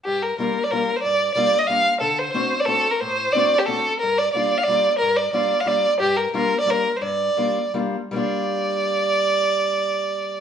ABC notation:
X:1
M:3/4
L:1/16
Q:"Swing" 1/4=180
K:Gm
V:1 name="Violin"
G2 B2 B3 d B3 c | d4 d3 e f3 z | A2 c2 c3 d A3 B | c4 d3 G A3 z |
B2 d2 d3 f d3 z | B2 d2 d3 f d3 z | G2 B2 B3 d B3 c | d8 z4 |
d12- | d12 |]
V:2 name="Steel-string acoustic guitar"
G,,4 [G,B,DF]2 z2 [G,B,DF]2 z2 | G,,4 [G,B,DF]2 z2 [G,B,DF]2 z2 | D,4 [A,CD^F]2 z2 [A,CDF]2 z2 | A,,4 [A,CD^F]2 z2 [A,CDF]2 z2 |
G,,4 [G,B,DF]2 z2 [G,B,DF]2 z2 | G,,4 [G,B,DF]2 z2 [G,B,DF]2 z2 | G,,4 [G,B,DF]2 z2 [G,B,DF]2 z2 | G,,4 [G,B,DF]2 z2 [G,B,DF]2 z2 |
[G,B,DF]12- | [G,B,DF]12 |]